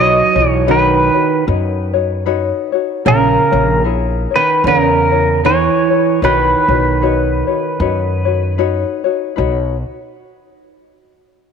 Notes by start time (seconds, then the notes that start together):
Already playing: B1 F#3 D#4 F#4 B4 C#5 D#5
0.35 B1 D#4 F#4 C#5
0.43 E3
0.51 C#5
0.67 D#3 D#4 F#4 B4 C#5
0.71 B4
1.14 D#4 F#4 C#5
1.47 F#2 D#4 F#4 B4 C#5
1.93 D#4 F#4 C#5
2.26 D#4 F#4 B4 C#5
2.72 D#4 F#4 C#5
3.05 A#1 C#3 E4 G#4 A#4 C#5
3.51 A#1 E4 G#4 C#5
3.84 E4 G#4 A#4 C#5
4.31 G#4 C#5
4.36 D#3 B4
4.64 E2 C#3 E4 G#4 A#4 C#5
4.68 A#4
5.11 E4 G#4 C#5
5.44 E3 E4 G#4 A#4 C#5
5.90 E4 G#4 C#5
6.22 B1 D#3 D#4 F#4 B4 C#5
6.68 B1 D#4 F#4 C#5
7.02 D#4 F#4 B4 C#5
7.47 D#4 F#4 C#5
7.79 F#2 D#4 F#4 B4 C#5
8.25 D#4 F#4 C#5
8.58 D#4 F#4 B4 C#5
9.04 D#4 F#4 C#5
9.36 B1 D#4 F#4 B4 C#5